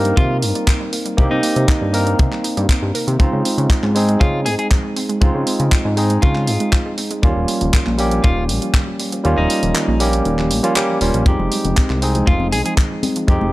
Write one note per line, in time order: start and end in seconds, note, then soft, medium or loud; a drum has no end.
0.00 0.13 G2 loud
0.00 1.15 A#3 medium
0.00 1.15 C4 medium
0.00 1.15 D#4 medium
0.00 1.16 A#4 medium
0.05 0.16 G3 medium
0.05 closed hi-hat medium
0.17 0.44 C3 medium
0.17 0.25 D#3 medium
0.17 0.37 F4 medium
0.17 kick loud
0.17 closed hi-hat soft
0.30 0.37 G3 medium
0.42 0.53 G2 medium
0.42 0.50 A#3 medium
0.42 open hi-hat loud
0.55 0.62 G3 medium
0.55 closed hi-hat medium
0.68 0.79 D#3 medium
0.68 kick loud
0.68 clap loud
0.68 closed hi-hat medium
0.81 0.85 G3 medium
0.93 0.97 A#3 medium
0.93 open hi-hat loud
1.06 1.16 G3 medium
1.06 closed hi-hat medium
1.17 1.28 C2 medium
1.17 1.25 D#3 medium
1.17 1.90 A#3 medium
1.17 1.90 C4 medium
1.17 1.91 D#4 medium
1.17 1.91 G4 medium
1.17 kick loud
1.17 closed hi-hat soft
1.31 1.41 C3 medium
1.31 1.38 G3 medium
1.31 2.01 D#4 medium
1.43 1.51 A#3 medium
1.43 open hi-hat loud
1.56 1.66 C3 loud
1.56 1.63 G3 medium
1.56 closed hi-hat medium
1.68 1.79 D#3 medium
1.68 kick loud
1.68 clap loud
1.68 closed hi-hat medium
1.81 2.15 G2 loud
1.81 1.86 G3 medium
1.93 3.16 A#3 medium
1.93 2.05 A#3 medium
1.93 3.17 C4 medium
1.93 3.17 D#4 medium
1.93 3.17 A#4 medium
1.93 open hi-hat loud
2.06 2.17 G3 medium
2.06 closed hi-hat medium
2.19 2.29 C3 loud
2.19 2.26 D#3 medium
2.19 kick loud
2.19 closed hi-hat soft
2.31 2.39 G3 medium
2.31 clap soft
2.44 2.51 D#4 medium
2.44 open hi-hat loud
2.57 2.67 G2 loud
2.57 2.68 G4 medium
2.57 closed hi-hat medium
2.69 2.74 C4 medium
2.69 kick loud
2.69 clap loud
2.69 closed hi-hat medium
2.82 2.92 G2 medium
2.82 2.87 D#3 loud
2.95 3.06 A#4 loud
2.95 open hi-hat loud
3.07 3.17 C3 loud
3.07 3.14 D#3 medium
3.07 closed hi-hat medium
3.19 3.30 C#2 loud
3.19 3.27 F3 medium
3.19 3.92 G#3 medium
3.19 3.92 C4 medium
3.19 3.93 D#4 medium
3.19 3.93 F4 medium
3.19 kick loud
3.19 closed hi-hat medium
3.33 3.43 C#3 medium
3.33 3.40 G#3 medium
3.45 3.52 C4 medium
3.45 open hi-hat loud
3.58 3.68 C#3 medium
3.58 3.65 G#3 medium
3.58 closed hi-hat medium
3.70 3.81 F3 medium
3.70 kick loud
3.70 clap loud
3.70 closed hi-hat medium
3.83 4.17 G#2 loud
3.83 3.90 C#4 medium
3.83 clap soft
3.95 5.18 G#3 medium
3.95 5.19 C4 medium
3.95 4.07 C4 medium
3.95 5.19 D#4 medium
3.95 5.19 G#4 medium
3.95 open hi-hat medium
4.09 4.19 G#3 medium
4.09 closed hi-hat medium
4.20 4.47 C#3 medium
4.20 4.28 F3 medium
4.20 4.40 F4 medium
4.20 kick loud
4.20 closed hi-hat soft
4.34 4.41 G#3 medium
4.46 4.56 G#2 medium
4.46 4.53 C4 medium
4.46 4.54 G#4 medium
4.46 open hi-hat loud
4.59 4.66 G#3 medium
4.59 4.67 G#4 medium
4.59 closed hi-hat medium
4.71 4.82 F3 medium
4.71 kick loud
4.71 clap loud
4.71 closed hi-hat medium
4.84 4.88 G#3 medium
4.96 5.01 C4 medium
4.96 open hi-hat medium
5.09 5.20 G#3 medium
5.09 closed hi-hat medium
5.21 5.32 C#2 medium
5.21 5.29 F3 medium
5.21 5.94 G#3 medium
5.21 5.94 C4 medium
5.21 5.95 D#4 medium
5.21 5.95 F4 medium
5.21 kick loud
5.21 closed hi-hat medium
5.34 5.44 C#3 medium
5.34 5.41 G#3 medium
5.47 5.54 C4 medium
5.47 open hi-hat loud
5.60 5.69 C#3 medium
5.60 5.67 G#3 medium
5.60 closed hi-hat medium
5.72 5.83 F3 medium
5.72 kick loud
5.72 clap loud
5.72 closed hi-hat medium
5.85 6.18 G#2 loud
5.85 5.92 C#4 medium
5.96 7.20 G#3 medium
5.96 7.20 C4 medium
5.96 6.08 C4 medium
5.96 7.20 D#4 medium
5.96 7.21 G#4 medium
5.96 open hi-hat medium
6.10 6.21 G#3 medium
6.10 closed hi-hat medium
6.22 6.49 C#3 medium
6.22 6.30 F3 medium
6.22 6.93 F4 medium
6.22 kick loud
6.22 closed hi-hat soft
6.35 6.42 G#3 medium
6.35 clap soft
6.47 6.58 G#2 medium
6.47 6.55 C4 medium
6.47 open hi-hat loud
6.60 6.67 G#3 medium
6.60 closed hi-hat medium
6.73 6.84 F3 medium
6.73 kick loud
6.73 clap loud
6.73 closed hi-hat soft
6.86 6.90 G#3 medium
6.98 7.02 C4 medium
6.98 open hi-hat medium
7.11 7.21 G#3 medium
7.11 closed hi-hat medium
7.22 7.33 D#2 medium
7.22 7.30 D#3 medium
7.22 7.95 G3 medium
7.22 7.96 A#3 medium
7.22 7.96 C#4 medium
7.22 7.96 F4 loud
7.22 kick loud
7.22 closed hi-hat medium
7.36 7.46 D#1 medium
7.36 7.43 F3 medium
7.48 7.56 G3 medium
7.48 open hi-hat loud
7.61 7.71 D#1 medium
7.61 7.68 F3 medium
7.61 closed hi-hat medium
7.74 7.85 D#3 medium
7.74 kick medium
7.74 clap loud
7.74 closed hi-hat medium
7.86 8.20 A#1 loud
7.86 7.94 A#3 medium
7.86 clap soft
7.98 9.21 G3 medium
7.98 8.10 G3 medium
7.98 9.22 A#3 medium
7.98 9.22 C#4 medium
7.98 9.22 G4 medium
7.98 open hi-hat medium
8.11 8.22 F3 medium
8.11 closed hi-hat medium
8.24 8.51 D#1 medium
8.24 8.31 D#3 medium
8.24 8.43 F4 medium
8.24 kick loud
8.24 closed hi-hat medium
8.37 8.44 F3 medium
8.49 8.60 A#1 medium
8.49 8.57 G3 medium
8.49 open hi-hat loud
8.62 8.69 F3 medium
8.62 closed hi-hat medium
8.74 8.86 D#3 medium
8.74 kick loud
8.74 clap loud
8.74 closed hi-hat medium
8.87 8.92 F3 medium
8.99 9.04 G3 medium
8.99 open hi-hat medium
9.12 9.23 F3 medium
9.12 closed hi-hat medium
9.24 9.35 D#2 loud
9.24 9.32 D#3 medium
9.24 9.97 G3 medium
9.24 9.97 A#3 medium
9.24 9.98 C#4 medium
9.24 9.98 F4 loud
9.24 closed hi-hat medium
9.38 9.48 D#1 medium
9.38 9.45 F3 medium
9.38 10.08 D#4 medium
9.50 9.57 G3 medium
9.50 open hi-hat loud
9.63 9.73 D#1 loud
9.63 9.70 F3 medium
9.63 closed hi-hat medium
9.75 9.86 D#3 medium
9.75 clap loud
9.75 closed hi-hat medium
9.88 10.22 A#1 loud
9.88 9.95 A#3 loud
9.99 10.61 G3 medium
9.99 10.12 G3 medium
9.99 10.61 A#3 medium
9.99 10.61 C#4 medium
9.99 10.62 G4 medium
9.99 open hi-hat medium
10.13 10.24 F3 medium
10.13 closed hi-hat medium
10.25 10.52 D#1 medium
10.25 10.33 D#3 medium
10.25 closed hi-hat medium
10.39 10.46 F3 medium
10.39 clap soft
10.50 10.61 A#1 medium
10.50 10.58 G3 medium
10.50 open hi-hat loud
10.63 10.71 F3 medium
10.63 10.73 G3 medium
10.63 10.73 A#3 medium
10.63 10.73 C#4 medium
10.63 10.73 F4 loud
10.63 closed hi-hat medium
10.76 10.87 D#3 medium
10.76 10.98 G3 medium
10.76 10.98 A#3 medium
10.76 10.98 C#4 medium
10.76 10.99 G4 medium
10.76 clap loud
10.76 closed hi-hat medium
10.89 10.93 F3 medium
11.01 11.11 D#1 loud
11.01 11.23 G3 medium
11.01 11.06 G3 medium
11.01 11.23 A#3 medium
11.01 11.24 C#4 medium
11.01 11.24 F4 medium
11.01 open hi-hat medium
11.14 11.24 A#1 loud
11.14 11.25 F3 medium
11.14 closed hi-hat medium
11.25 11.37 F2 medium
11.25 11.34 D#3 medium
11.25 11.99 G#3 medium
11.25 11.99 C4 medium
11.25 11.99 D#4 medium
11.25 12.00 G4 loud
11.25 kick loud
11.25 closed hi-hat medium
11.39 11.49 F1 medium
11.39 11.46 F3 medium
11.39 low conga medium
11.52 11.59 G3 medium
11.52 open hi-hat loud
11.64 11.74 F1 medium
11.64 11.72 F3 medium
11.64 closed hi-hat medium
11.64 high conga medium
11.77 11.88 D#3 medium
11.77 kick loud
11.77 clap loud
11.77 closed hi-hat medium
11.90 12.23 C2 medium
11.90 11.97 G#3 medium
11.90 clap soft
12.01 12.13 G3 medium
12.01 13.25 G#3 medium
12.01 13.25 C4 medium
12.01 13.26 D#4 medium
12.01 13.26 G#4 medium
12.01 open hi-hat medium
12.15 12.26 F3 medium
12.15 closed hi-hat medium
12.15 low conga medium
12.27 12.54 F1 medium
12.27 12.35 D#3 medium
12.27 12.47 F4 medium
12.27 kick loud
12.27 closed hi-hat medium
12.40 12.47 F3 medium
12.40 high conga medium
12.52 12.63 C2 medium
12.52 12.60 G3 medium
12.52 12.61 G#4 medium
12.52 open hi-hat loud
12.66 12.73 F3 medium
12.66 12.73 G#4 medium
12.66 closed hi-hat medium
12.77 12.89 D#3 medium
12.77 kick loud
12.77 clap loud
12.77 closed hi-hat medium
12.91 12.95 F3 medium
13.03 13.08 G3 medium
13.03 open hi-hat medium
13.03 high conga loud
13.16 13.27 F3 medium
13.16 closed hi-hat medium
13.27 13.38 F2 medium
13.27 13.36 D#3 medium
13.27 13.53 G#3 medium
13.27 13.53 C4 medium
13.27 13.53 D#4 medium
13.27 13.53 G4 loud
13.27 kick loud
13.27 closed hi-hat medium
13.41 13.51 F1 medium
13.41 13.48 F3 medium
13.41 low conga loud